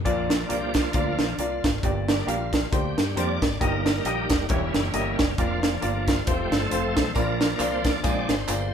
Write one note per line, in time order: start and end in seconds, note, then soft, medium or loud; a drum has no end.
0.05 0.43 A#1 loud
0.05 0.71 A#2 medium
0.05 1.17 F3 medium
0.05 0.34 A#3 medium
0.05 1.17 A#3 medium
0.05 0.34 D4 medium
0.05 1.17 D4 medium
0.05 0.34 F4 medium
0.05 0.34 D5 medium
0.05 kick medium
0.05 closed hi-hat medium
0.30 snare loud
0.30 closed hi-hat medium
0.49 0.88 C2 medium
0.49 0.78 A#3 medium
0.49 0.78 D4 medium
0.49 0.78 F4 medium
0.49 0.81 G4 loud
0.49 0.78 D5 medium
0.49 closed hi-hat medium
0.74 kick medium
0.74 snare loud
0.74 closed hi-hat medium
0.79 0.93 F4 medium
0.93 1.16 D2 medium
0.93 1.23 A#3 medium
0.93 1.23 D4 medium
0.93 1.20 F4 medium
0.93 1.23 F4 medium
0.93 1.23 D5 medium
0.93 kick loud
0.93 closed hi-hat medium
1.18 1.35 A#1 medium
1.18 1.36 F3 soft
1.18 1.36 A#3 soft
1.18 1.39 D4 medium
1.18 snare medium
1.18 closed hi-hat medium
1.38 1.60 C2 medium
1.38 1.68 A#3 medium
1.38 1.67 D4 medium
1.38 1.80 F4 medium
1.38 1.68 F4 medium
1.38 1.68 D5 medium
1.38 closed hi-hat medium
1.64 1.81 G#1 medium
1.64 kick loud
1.64 snare loud
1.64 closed hi-hat medium
1.83 2.21 G1 loud
1.83 2.49 G2 medium
1.83 2.12 A#3 medium
1.83 2.12 D4 medium
1.83 2.12 G4 medium
1.83 2.12 D5 medium
1.83 kick loud
1.83 closed hi-hat medium
2.08 2.36 G3 medium
2.08 2.36 A#3 soft
2.08 2.37 D4 medium
2.08 snare loud
2.08 closed hi-hat medium
2.27 2.65 A#1 medium
2.27 2.56 A#3 medium
2.27 2.56 D4 medium
2.27 2.69 F4 medium
2.27 2.56 G4 medium
2.27 2.56 F5 medium
2.27 closed hi-hat medium
2.53 kick medium
2.53 snare loud
2.53 closed hi-hat medium
2.72 2.93 D2 medium
2.72 3.01 A#3 medium
2.72 3.01 D4 medium
2.72 3.18 G4 medium
2.72 3.01 G4 medium
2.72 3.01 C5 medium
2.72 kick loud
2.72 closed hi-hat medium
2.98 3.14 G2 medium
2.98 snare medium
2.98 closed hi-hat medium
3.16 3.37 F2 medium
3.16 3.39 G3 soft
3.16 3.45 A#3 medium
3.16 3.39 A#3 soft
3.16 3.45 D4 medium
3.16 3.39 D4 medium
3.16 3.45 G4 medium
3.16 3.45 C5 medium
3.16 3.58 D5 loud
3.16 closed hi-hat loud
3.42 3.58 G#1 loud
3.42 kick medium
3.42 snare loud
3.42 closed hi-hat medium
3.60 3.99 G1 loud
3.60 4.26 G2 medium
3.60 4.46 G3 medium
3.60 3.89 A#3 medium
3.60 4.46 A#3 medium
3.60 3.89 D#4 medium
3.60 4.47 D#4 medium
3.60 3.90 G4 medium
3.60 4.07 A#4 medium
3.60 3.89 D#5 medium
3.60 kick medium
3.60 closed hi-hat medium
3.86 snare loud
3.86 closed hi-hat medium
4.05 4.26 A#1 medium
4.05 4.34 A#3 medium
4.05 4.34 D#4 medium
4.05 4.42 G4 loud
4.05 4.34 G4 medium
4.05 4.34 D#5 medium
4.05 closed hi-hat medium
4.30 4.47 F1 medium
4.30 kick medium
4.30 snare loud
4.30 closed hi-hat medium
4.43 4.49 G4 medium
4.49 4.71 E1 loud
4.49 5.15 E3 medium
4.49 5.34 G3 medium
4.49 4.78 A#3 medium
4.49 5.34 A#3 medium
4.49 5.34 C#4 medium
4.49 4.78 E4 medium
4.49 5.16 E4 medium
4.49 4.78 G4 medium
4.49 4.78 C#5 medium
4.49 kick loud
4.49 closed hi-hat medium
4.74 4.91 F#1 medium
4.74 snare medium
4.74 closed hi-hat medium
4.93 5.15 G1 medium
4.93 5.22 A#3 medium
4.93 5.22 E4 medium
4.93 5.23 G4 medium
4.93 5.23 D#5 medium
4.93 closed hi-hat medium
5.19 5.36 F#1 medium
5.19 kick medium
5.19 snare loud
5.19 closed hi-hat medium
5.38 5.76 F1 medium
5.38 6.23 F3 medium
5.38 6.23 A#3 medium
5.38 5.67 A#3 medium
5.38 5.61 D4 medium
5.38 5.67 D4 medium
5.38 5.67 F4 medium
5.38 5.64 F4 medium
5.38 5.67 D5 medium
5.38 kick medium
5.38 closed hi-hat medium
5.62 6.09 D4 medium
5.62 snare loud
5.62 closed hi-hat medium
5.81 6.20 G1 medium
5.81 6.11 A#3 medium
5.81 6.11 D4 medium
5.81 6.11 F4 medium
5.81 6.11 D5 medium
5.81 closed hi-hat medium
6.06 6.27 F4 medium
6.06 kick medium
6.06 snare loud
6.06 closed hi-hat medium
6.26 6.48 F1 medium
6.26 7.11 F3 medium
6.26 7.11 A3 medium
6.26 6.55 A3 medium
6.26 6.56 C4 medium
6.26 7.12 C4 medium
6.26 6.56 F4 medium
6.26 6.53 G4 medium
6.26 6.56 C5 medium
6.26 kick loud
6.26 closed hi-hat medium
6.51 6.68 G1 medium
6.51 7.12 A4 loud
6.51 snare medium
6.51 closed hi-hat medium
6.71 6.93 F1 medium
6.71 7.00 A3 medium
6.71 7.00 C4 medium
6.71 7.00 F4 medium
6.71 7.00 C5 medium
6.71 closed hi-hat medium
6.97 7.13 B1 medium
6.97 kick medium
6.97 snare loud
6.97 closed hi-hat medium
7.14 7.53 A#1 loud
7.14 7.81 A#2 medium
7.14 7.99 F3 medium
7.14 8.00 A#3 medium
7.14 7.44 A#3 medium
7.14 8.00 D4 medium
7.14 7.44 D4 medium
7.14 7.44 F4 medium
7.14 7.61 A#4 loud
7.14 7.44 D5 medium
7.14 kick loud
7.14 closed hi-hat medium
7.14 tambourine medium
7.41 snare loud
7.41 closed hi-hat medium
7.41 tambourine medium
7.59 7.97 C2 medium
7.59 7.88 A#3 medium
7.59 7.88 D4 medium
7.59 7.88 F4 medium
7.59 7.86 C5 loud
7.59 7.89 D5 medium
7.59 clap medium
7.59 closed hi-hat medium
7.59 tambourine medium
7.84 8.03 D5 loud
7.84 kick loud
7.84 snare loud
7.84 closed hi-hat medium
7.84 tambourine medium
8.03 8.26 A#1 medium
8.03 8.69 A#2 medium
8.03 8.35 G#3 medium
8.03 8.32 A#3 medium
8.03 8.35 C4 medium
8.03 8.36 D4 medium
8.03 8.33 F4 medium
8.03 8.33 G#4 medium
8.03 8.33 D5 medium
8.03 8.30 D5 loud
8.03 kick loud
8.03 closed hi-hat medium
8.03 tambourine medium
8.29 8.45 G#1 medium
8.29 8.74 C5 loud
8.29 snare medium
8.29 closed hi-hat medium
8.29 tambourine soft
8.48 8.70 G1 medium
8.48 8.74 A#3 medium
8.48 8.74 F4 medium
8.48 8.74 G#4 medium
8.48 8.74 D5 medium
8.48 clap medium
8.48 closed hi-hat loud
8.48 tambourine medium